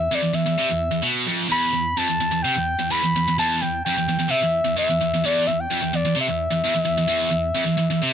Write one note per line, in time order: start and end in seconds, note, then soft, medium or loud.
0.00 0.16 E5 loud
0.11 0.22 F2 loud
0.11 0.36 D5 medium
0.22 0.33 E2 medium
0.34 0.45 E2 medium
0.34 1.04 E5 medium
0.46 0.58 E2 medium
0.58 0.69 C3 medium
0.69 0.88 E2 medium
0.91 1.04 E2 medium
1.03 1.26 B2 loud
1.27 1.49 F2 loud
1.49 1.73 E2 loud
1.49 1.99 B5 loud
1.74 1.93 E2 medium
1.97 2.08 F2 loud
1.97 2.44 A5 loud
2.10 2.19 E2 medium
2.20 2.30 E2 medium
2.32 2.44 E2 medium
2.43 2.55 C3 medium
2.43 2.93 G5 medium
2.55 2.74 E2 medium
2.79 2.89 E2 medium
2.91 3.01 E2 medium
2.91 3.37 B5 loud
3.04 3.14 E2 medium
3.16 3.26 E2 medium
3.28 3.37 E2 medium
3.38 3.60 E2 loud
3.38 3.63 A5 loud
3.62 3.80 E2 medium
3.62 3.84 G5 loud
3.85 3.96 F2 loud
3.85 4.32 G5 medium
3.98 4.08 E2 medium
4.09 4.18 E2 medium
4.20 4.30 E2 medium
4.29 4.40 C3 loud
4.29 4.77 E5 loud
4.43 4.61 E2 medium
4.65 4.75 E2 medium
4.77 4.87 E2 loud
4.77 5.27 E5 medium
4.90 5.00 E2 medium
5.01 5.12 E2 medium
5.14 5.23 E2 medium
5.24 5.46 E2 loud
5.24 5.49 D5 loud
5.47 5.65 E2 medium
5.47 5.62 E5 medium
5.61 5.98 G5 medium
5.71 5.81 F2 loud
5.82 5.92 E2 medium
5.93 6.04 E2 medium
5.93 6.17 D5 medium
6.05 6.16 E2 medium
6.15 6.26 C3 medium
6.21 8.13 E5 medium
6.28 6.46 E2 medium
6.51 6.62 E2 medium
6.64 6.74 E2 medium
6.75 6.84 E2 medium
6.85 6.96 E2 medium
6.98 7.07 E2 medium
7.08 7.30 E2 loud
7.31 7.50 E2 medium
7.55 7.65 F2 loud
7.66 7.76 E2 medium
7.77 7.89 E2 medium
7.90 8.02 E2 medium
8.02 8.13 C3 medium